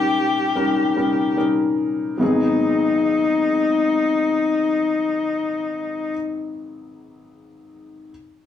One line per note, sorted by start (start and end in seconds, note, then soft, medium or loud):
0.00 2.23 A#2 soft
0.00 0.55 G3 soft
0.00 0.56 C#4 soft
0.00 0.57 D#4 soft
0.00 1.38 G4 medium
0.00 0.56 A#4 medium
0.55 0.94 G3 soft
0.55 0.94 C#4 soft
0.55 0.95 D#4 soft
0.55 0.95 A#4 medium
0.96 1.35 G3 soft
0.96 1.36 C#4 soft
0.96 1.36 D#4 soft
0.96 1.36 A#4 medium
1.37 2.17 G3 soft
1.37 2.17 C#4 soft
1.37 2.17 D#4 soft
1.37 2.17 A#4 medium
2.17 6.13 G#1 soft
2.17 6.10 F#3 soft
2.17 6.11 B3 soft
2.17 6.13 D#4 soft
2.22 6.15 G#4 soft